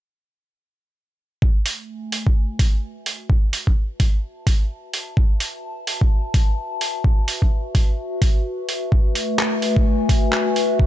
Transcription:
1.42 A3, kick
1.59 F#4
1.66 G#5, open hi-hat
1.80 B4
2.12 open hi-hat
2.17 E5
2.27 kick
2.59 kick, open hi-hat
3.06 open hi-hat
3.30 kick
3.53 open hi-hat
3.66 A5, kick
4.00 kick, open hi-hat
4.47 kick, open hi-hat
4.94 open hi-hat
5.17 kick
5.40 open hi-hat
5.87 open hi-hat
6.01 kick
6.34 kick, open hi-hat
6.81 open hi-hat
7.04 kick
7.28 open hi-hat
7.42 kick
7.75 kick, open hi-hat
8.22 kick, open hi-hat
8.69 open hi-hat
8.92 A3, kick
9.15 open hi-hat
9.39 clap
9.62 G#5, open hi-hat
9.76 kick
10.09 kick, open hi-hat
10.33 clap
10.56 open hi-hat
10.79 kick

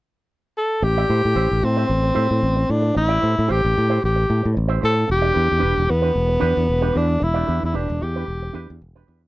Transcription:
0.57 A4
0.82 A1 G4, muted clean electric guitar stroke
0.98 E4 G4 D5
1.09 A2 E4 G4 C5
1.24 A2, muted clean electric guitar stroke
1.35 A1 E4 G4 C5
1.50 A1, muted clean electric guitar stroke
1.62 A2 C4, muted clean electric guitar stroke
1.77 E4 G4 C5
1.88 A1, muted clean electric guitar stroke
2.03 muted clean electric guitar stroke
2.15 A2 E4 G4 C5
2.29 A2, muted clean electric guitar stroke
2.41 A1, muted clean electric guitar stroke
2.56 muted clean electric guitar stroke
2.70 A2 D4
2.82 muted clean electric guitar stroke
2.94 A1 E4, muted clean electric guitar stroke
3.08 E4 G4 D5
3.21 A2 E4 G4 C5
3.36 A2, muted clean electric guitar stroke
3.48 A1 E4 G4 C5
3.62 A1, muted clean electric guitar stroke
3.74 A2, muted clean electric guitar stroke
3.90 E4 G4 C5
4.02 A1 G4, muted clean electric guitar stroke
4.16 muted clean electric guitar stroke
4.30 A2
4.43 A2, muted clean electric guitar stroke
4.54 A1, muted clean electric guitar stroke
4.68 E4 G4 C5
4.81 A2 E4 G4 A4 C5
4.96 muted clean electric guitar stroke
5.07 E1 G4, muted clean electric guitar stroke
5.22 D4 G4 D5
5.33 E2 D4 G4 B4
5.48 E2, muted clean electric guitar stroke
5.59 D4 G4 B4
5.63 E1
5.75 E1, muted clean electric guitar stroke
5.87 E2 B3, muted clean electric guitar stroke
6.02 D4 G4 B4
6.13 E1, muted clean electric guitar stroke
6.29 muted clean electric guitar stroke
6.40 E2 D4 G4 B4
6.54 E2, muted clean electric guitar stroke
6.67 E1, muted clean electric guitar stroke
6.82 D4 G4 B4
6.93 E2 D4 G4 B4
6.97 D4
7.07 muted clean electric guitar stroke
7.20 E1 E4, muted clean electric guitar stroke
7.34 D4 G4 D5
7.47 E2 D4 G4 B4
7.62 E2 E4, muted clean electric guitar stroke
7.73 E1 D4 G4 B4
7.89 E1, muted clean electric guitar stroke
8.02 E2 G4, muted clean electric guitar stroke
8.16 D4 G4 B4
8.27 E1, muted clean electric guitar stroke
8.42 muted clean electric guitar stroke
8.53 E2 D4 G4 B4
8.69 E2, muted clean electric guitar stroke
8.81 E1, muted clean electric guitar stroke
8.95 D4 G4 B4
9.07 E2 D4 G4 B4
9.23 muted clean electric guitar stroke

